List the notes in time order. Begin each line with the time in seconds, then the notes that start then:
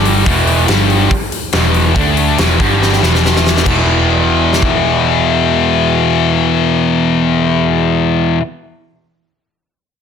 Already playing: G1 G2 D3 G3
0.05 open hi-hat
0.26 E1 E2 B2 E3, kick, open hi-hat
0.47 open hi-hat
0.68 G1 G2 D3 G3, snare, open hi-hat
0.90 open hi-hat
1.10 muted overdriven electric guitar stroke, muted distorted electric guitar stroke, kick, open hi-hat
1.32 open hi-hat
1.52 E1 E2 B2 E3, snare, open hi-hat
1.74 open hi-hat
1.95 D2 D3 A3 D4, kick, open hi-hat
2.17 open hi-hat
2.37 E1 E2 B2 E3, snare, open hi-hat
2.59 G1 G2 D3 G3, kick, open hi-hat
2.82 snare
2.93 snare
3.01 E1 E2 B2 E3, snare
3.15 snare
3.25 snare
3.36 snare
3.46 snare
3.57 snare
3.64 E1 E2 B2 E3, kick, crash
4.53 snare
4.62 kick